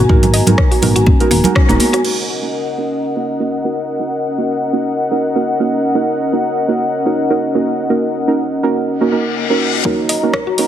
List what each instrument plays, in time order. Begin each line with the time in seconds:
Already playing: analog synth pad B3 F#4 G#5 A#5
0.09 analog synth bass G#1, synth stab G#3 B3 D#4 F#4 A#4, synth arpeggio sound D#4, kick, mid tom
0.23 closed hi-hat, high conga, low conga
0.34 synth arpeggio sound D#5, open hi-hat
0.47 analog synth bass G#1, synth stab G#3 B3 D#4 F#4 A#4, closed hi-hat, low conga
0.58 synth arpeggio sound A#4, kick, cross-stick
0.71 synth arpeggio sound F#4, open hi-hat
0.82 analog synth bass G#1, synth stab G#3 B3 D#4 F#4 A#4, mid tom, open hi-hat, low conga
0.96 synth arpeggio sound F#4, closed hi-hat
1.06 synth arpeggio sound C#4, kick, high conga
1.20 synth stab G#3 B3 D#4 F#4 A#4, closed hi-hat
1.31 analog synth bass D#1, synth arpeggio sound A#3, open hi-hat, high conga
1.44 synth stab G#3 B3 D#4 F#4 A#4, closed hi-hat, low conga
1.55 synth arpeggio sound C#4, kick, cross-stick
1.69 analog synth bass D#1, synth stab G#3 B3 D#4 F#4 A#4, synth arpeggio sound A#3, closed hi-hat, high conga
1.80 open hi-hat, high conga
1.93 synth arpeggio sound F#4, cross-stick, closed hi-hat
2.04 synth stab A#3 C#4 D#4 F#4 A#4, analog synth pad C#4 A#4 D#5 F#5, crash
2.43 synth stab A#3 C#4 D#4 F#4 A#4
2.78 synth stab A#3 C#4 D#4 F#4 A#4
3.16 synth stab A#3 C#4 D#4 F#4 A#4
3.40 synth stab A#3 C#4 D#4 F#4 A#4
3.64 synth stab A#3 C#4 D#4 F#4 A#4
4.00 synth stab A#3 C#4 D#4 F#4 A#4
4.38 synth stab A#3 C#4 D#4 F#4 A#4
4.73 synth stab A#3 C#4 D#4 F#4 A#4
5.11 synth stab A#3 C#4 D#4 F#4 A#4
5.35 synth stab A#3 C#4 D#4 F#4 A#4
5.60 synth stab A#3 C#4 D#4 F#4 A#4
5.95 synth stab A#3 C#4 D#4 F#4 A#4
6.33 synth stab A#3 C#4 D#4 F#4 A#4
6.68 synth stab A#3 C#4 D#4 F#4 A#4
7.06 synth stab A#3 C#4 D#4 F#4 A#4
7.30 synth stab A#3 C#4 D#4 F#4 A#4
7.55 synth stab A#3 C#4 D#4 F#4 A#4
7.90 synth stab A#3 C#4 D#4 F#4 A#4
8.28 synth stab A#3 C#4 D#4 F#4 A#4
8.63 synth stab A#3 C#4 D#4 F#4 A#4
8.87 reverse cymbal
9.01 synth stab A#3 C#4 D#4 F#4 A#4
9.12 synth stab A#3 C#4 D#4 F#4 A#4
9.50 synth stab A#3 C#4 D#4 F#4 A#4
9.85 analog synth bass D#1, synth stab A#3 C#4 D#4 F#4 A#4, synth arpeggio sound D#4, analog synth pad F#4 C#5 D#5 A#5, kick, riser
10.09 synth arpeggio sound D#5, open hi-hat
10.23 analog synth bass D#1, synth stab A#3 C#4 D#4 F#4 A#4
10.33 synth arpeggio sound A#4, kick, cross-stick
10.47 synth arpeggio sound F#4
10.58 analog synth bass D#1, synth stab A#3 C#4 D#4 F#4 A#4, open hi-hat